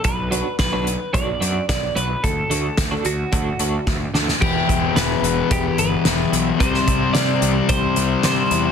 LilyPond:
<<
  \new Staff \with { instrumentName = "Clean electric guitar" } { \time 4/4 \key e \minor \tempo 4 = 110 b'4 b'4 d''4 d''8 b'8 | a'4. fis'2 r8 | g'4 b'4 g'8 b'4 r8 | c''4 d''4 c''4 c''4 | }
  \new Staff \with { instrumentName = "Clean electric guitar" } { \time 4/4 \key e \minor r8 <fis b d' fis'>16 r8 <fis b d' fis'>16 r8 <fis b d' fis'>16 r16 <fis b d' fis'>16 r8. <fis b d' fis'>16 r16 | r8 <d a d' fis'>16 r8 <d a d' fis'>16 r8 <d a d' fis'>16 r16 <d a d' fis'>16 r8. <d a d' fis'>16 r16 | e,8 e'8 b8 e8 b8 e'8 g8 e'8 | c8 e'8 c'8 e8 c'8 e'8 g8 e'8 | }
  \new Staff \with { instrumentName = "Distorted electric guitar" } { \clef bass \time 4/4 \key e \minor r1 | r1 | <e, b, e>1 | <c g c'>1 | }
  \new Staff \with { instrumentName = "Picked electric bass" } { \clef bass \time 4/4 \key e \minor b,,4 b,,4 b,,8 fis,8 b,,8 b,,8 | d,8 d,8 d,8 d,8 d,8 d,8 d,8 d,8 | e,,8 e,,8 e,,8 e,,8 e,,8 g,,8 e,,8 b,,8 | c,8 c,8 c8 c,8 c,8 c,8 c8 e,8 | }
  \new DrumStaff \with { instrumentName = "Drums" } \drummode { \time 4/4 <hh bd>8 hh8 <hh bd sn>8 hh8 <hh bd>8 hh8 <hh bd sn>8 hh8 | <hh bd>8 hh8 <hh bd sn>8 hh8 <hh bd>8 hh8 <bd sn>8 sn16 sn16 | <cymc bd>8 <hh bd>8 <hh sn>8 hh8 <hh bd>8 hh8 <hh sn>8 hh8 | <hh bd>16 sn16 <hh bd>8 <hh sn>8 hh8 <hh bd>8 hh8 <hh sn>8 hh8 | }
>>